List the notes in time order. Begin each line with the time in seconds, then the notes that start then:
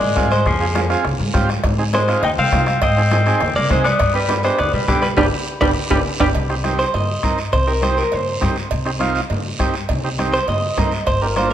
Already playing: G#3 D5
0.01 G#2, high conga
0.16 G#2 C4 F4 G#4, bombo low, bombo rim, high conga, low conga, short guiro
0.31 G#3 C5, bombo rim, high conga, short guiro
0.46 F2 F3 G#4, bombo low, bombo rim, high conga, low conga, long guiro
0.60 C4 F4 G#4
0.75 C4 F4 G#4, bombo rim, high conga, short guiro
0.90 C4 F4 G#4, bombo rim, short guiro
1.05 C2, bombo rim, high conga, low conga, long guiro
1.20 G#2, high conga
1.33 G#2 C4 F4 G4, bombo low, bombo rim, high conga, low conga, short guiro
1.49 bombo rim, high conga, short guiro
1.64 G#2, bombo low, bombo rim, cowbell, high conga, low conga, long guiro
1.78 C4 D#4 G#4
1.93 G#3 C4 D#4 G#4 C5, bombo rim, high conga, short guiro
2.08 C4 D#4 F4, bombo rim, short guiro
2.23 D#2 D#4 G5, bombo rim, cowbell, high conga, low conga, long guiro
2.38 C3 C4 F5, high conga
2.52 C3 C4 D#4 F4, bombo low, bombo rim, high conga, low timbale, short guiro
2.66 bombo rim, high conga, short guiro
2.82 G#2 C4 D#5, bombo low, bombo rim, cowbell, high conga, long guiro
2.97 C4 D#4 G#4
3.11 C4 D#4 G#4, bombo rim, high conga, short guiro
3.26 C4 D#4 G#4, bombo rim, short guiro
3.40 D#2, bombo rim, cowbell, high conga, low conga, long guiro
3.56 C3 A#3 D5, high conga
3.70 C3 G#3 C4 D#4 G#4 C5, bombo low, bombo rim, high conga, low conga, low timbale, short guiro
3.84 B3 D5, bombo rim, high conga, short guiro
3.99 G2, bombo low, bombo rim, cowbell, high conga, long guiro
4.14 G3 B3 D4 G4 B4
4.29 B3 D4 G4, bombo rim, high conga, short guiro
4.43 G#3 B3 D4 G4 C5, bombo rim, short guiro
4.58 D2 B3 D5, bombo rim, cowbell, high conga, low conga, long guiro
4.73 B2 G3 B4, high conga
4.88 B2 D3 B3 D4 G4, bombo low, bombo rim, high conga, low conga, short guiro
5.02 G3 B4, bombo rim, high conga, short guiro
5.17 G1 G3 B3 D4 G4 B4 D5, bombo low, low conga, high timbale, long guiro
5.61 G1 G3 B3 D4 G4 B4 D5, bombo low, low conga, high timbale, long guiro
5.90 G1 G3 B3 D4 G4 B4 D5, bombo low, low conga, high timbale, long guiro
6.20 G1 G3 B3 D4 G4 B4 D5, bombo low, low conga, high timbale, long guiro
6.35 C2, bombo low, cowbell, high conga, long guiro
6.49 C4 D#4 G4, bombo rim
6.64 C4 D#4 G4, bombo rim, high conga, short guiro
6.79 C5, short guiro
6.94 G2 D#5, cowbell, high conga, low conga, long guiro
7.23 G2 C4 D#4 A#4, bombo low, bombo rim, high conga, short guiro
7.38 short guiro
7.53 C2 C5, bombo low, cowbell, high conga, long guiro
7.67 C4 D#4 G4 A#4
7.82 C4 D#4 G4 C5, bombo rim, high conga, short guiro
7.97 A#4, short guiro
8.12 G2 C5, cowbell, high conga, low conga, long guiro
8.41 G2 C4 D#4 G4, bombo low, bombo rim, high conga, low conga, short guiro
8.56 short guiro
8.71 C2, bombo low, cowbell, high conga, long guiro
8.85 C4 D#4 G4, bombo rim
8.99 C4 D#4 F4, bombo rim, high conga, short guiro
9.15 short guiro
9.30 G2, cowbell, high conga, low conga, long guiro
9.59 G2 C4 D#4 G4, bombo low, bombo rim, high conga, short guiro
9.74 short guiro
9.89 C2, bombo low, cowbell, high conga, low conga, long guiro
10.04 C4 D#4 G4
10.18 C4 D#4 G4, bombo rim, high conga, short guiro
10.34 C5, short guiro
10.48 G2 D#5, cowbell, high conga, low conga, long guiro
10.77 G2 C4 D#4 A#4, bombo low, bombo rim, high conga, low conga, low timbale, short guiro
10.91 short guiro
11.07 G1 C5, bombo low, cowbell, high conga, long guiro
11.22 A#3 D4 G4 A#4
11.36 A#3 D4 F4 C5, bombo rim, high conga, short guiro